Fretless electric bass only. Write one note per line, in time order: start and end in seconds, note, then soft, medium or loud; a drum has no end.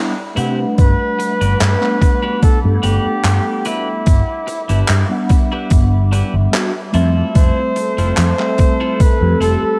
0.37 0.64 C3 loud
0.79 0.92 G1 loud
1.41 1.53 G1 medium
1.60 1.74 G2 loud
2.43 muted fretless electric bass stroke soft
2.64 2.76 G2 medium
2.83 2.97 G1 medium
3.05 muted fretless electric bass stroke soft
3.24 3.38 G2 medium
4.07 4.20 G1 loud
4.69 4.81 G1 medium
4.89 5.02 G2 loud
5.71 6.21 G1 medium
6.33 6.46 G1 medium
6.94 7.21 F2 loud
7.36 7.49 F1 loud
7.98 8.10 F1 medium
8.17 8.31 F2 loud
9.00 muted fretless electric bass stroke soft
9.21 9.33 F2 medium
9.40 9.54 F1 medium
9.62 muted fretless electric bass stroke soft